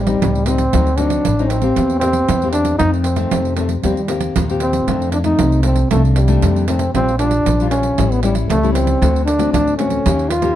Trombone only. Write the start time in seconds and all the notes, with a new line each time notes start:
Already playing: G3
0.46 C4
0.97 D4
1.48 C4
1.99 C4
2.52 D4
2.79 D#4
3.04 C4
3.57 A3
3.82 G3
3.97 G3
4.62 C4
5.13 D4
5.24 D#4
5.64 C4
5.91 A3
6.16 G3
6.68 C4
6.95 C4
7.19 D4
7.71 C#4
8.11 B3
8.23 G3
8.49 A3
8.74 C4
9.25 D4
9.53 D4
9.77 C#4
10.29 F4